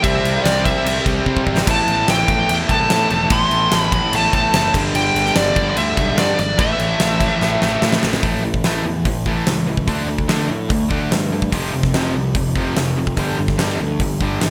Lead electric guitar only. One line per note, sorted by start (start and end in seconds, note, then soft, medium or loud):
0.03 0.43 E5 medium
0.44 0.65 D5 medium
0.66 1.03 E5 medium
1.71 2.07 A5 medium
2.10 2.49 G5 loud
2.50 2.55 G5 loud
2.71 3.28 A5 loud
3.32 3.77 C6 loud
3.77 3.93 B5 loud
3.94 4.12 B5 loud
4.16 4.34 A5 loud
4.35 4.73 A5 loud
4.96 5.38 G5 loud
5.36 5.69 D5 loud
5.71 5.77 D5 medium
5.78 6.18 E5 medium
6.19 6.39 D5 medium
6.40 6.60 D5 medium
6.61 7.99 E5 medium